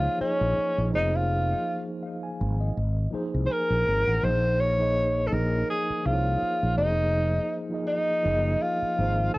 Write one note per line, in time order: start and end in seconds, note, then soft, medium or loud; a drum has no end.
0.00 0.18 F3 medium
0.00 0.19 A#3 medium
0.00 0.20 D#4 medium
0.00 0.17 F4 medium
0.00 0.21 G#4 medium
0.00 0.94 C5 medium
0.00 0.18 C#5 medium
0.18 0.89 F3 medium
0.18 0.90 A#3 medium
0.18 0.89 C#4 medium
0.18 0.91 D#4 medium
0.18 0.93 G#4 medium
0.18 muted fretless electric bass stroke soft
0.22 0.94 D#5 medium
0.41 0.54 A#1 medium
0.78 0.90 A#1 medium
0.90 1.53 F1 loud
0.90 2.26 F3 medium
0.90 2.27 A#3 medium
0.90 2.28 D#4 medium
0.94 1.17 D#4 medium
0.94 2.28 G#4 medium
0.94 2.29 C5 medium
1.16 1.88 F4 medium
2.03 2.22 F5 medium
2.23 2.58 G#5 medium
2.41 2.70 G#1 medium
2.61 2.95 D#5 medium
2.77 3.06 G#1 medium
3.10 3.79 F3 medium
3.10 3.79 A#3 medium
3.10 3.80 D#4 medium
3.10 3.80 G#4 medium
3.10 muted fretless electric bass stroke soft
3.15 3.81 C5 loud
3.34 3.47 C2 medium
3.46 3.53 C5 medium
3.50 4.25 A#4 loud
3.50 3.84 G#5 medium
3.70 3.83 A#1 medium
3.86 4.03 G#1 medium
3.86 4.05 A#5 medium
4.07 4.20 A1 medium
4.07 4.41 F#5 medium
4.21 5.28 A#1 medium
4.21 4.73 F3 medium
4.21 4.74 A#3 medium
4.21 4.74 D#4 medium
4.21 4.75 G#4 medium
4.21 4.62 C5 medium
4.26 4.75 C5 loud
4.60 5.29 C#5 loud
4.77 5.26 F3 medium
4.77 5.27 A#3 medium
4.77 5.27 D#4 medium
4.77 5.28 G#4 medium
4.82 5.29 D#5 medium
5.27 5.98 F3 medium
5.27 5.99 A#3 medium
5.27 5.34 A4 medium
5.31 5.62 A#1 loud
5.31 5.99 D#4 medium
5.31 6.00 G#4 medium
5.31 5.69 A#4 medium
5.31 6.00 A#4 medium
5.70 6.07 G#4 medium
5.90 muted fretless electric bass stroke soft
6.02 6.35 C2 medium
6.02 6.74 F3 medium
6.02 6.76 A#3 medium
6.02 6.76 D#4 medium
6.02 6.77 F4 medium
6.02 6.78 G#4 soft
6.07 6.13 C5 medium
6.13 6.82 C#5 medium
6.42 muted fretless electric bass stroke soft
6.63 6.75 A#1 medium
6.75 7.38 F1 medium
6.75 7.61 F3 medium
6.75 7.62 A#3 medium
6.75 7.58 D#4 medium
6.75 7.62 D#4 medium
6.75 6.86 F#4 medium
6.80 7.64 C5 medium
6.85 7.66 G#4 medium
7.69 8.19 F3 medium
7.69 8.20 A#3 medium
7.69 8.20 D#4 medium
7.73 8.21 G#4 medium
7.73 8.21 D#5 medium
7.87 8.63 D#4 medium
8.23 8.55 F#1 medium
8.23 8.91 F3 medium
8.23 8.92 A#3 medium
8.23 8.92 D#4 medium
8.23 8.93 G#4 medium
8.27 8.93 D#5 medium
8.62 9.33 F4 medium
8.82 muted fretless electric bass stroke soft
8.96 9.28 G#1 medium
8.96 9.38 F3 medium
8.96 9.38 A#3 medium
8.96 9.38 D#4 medium
8.96 9.38 G#4 medium
9.01 9.38 C5 medium
9.34 9.38 A#4 medium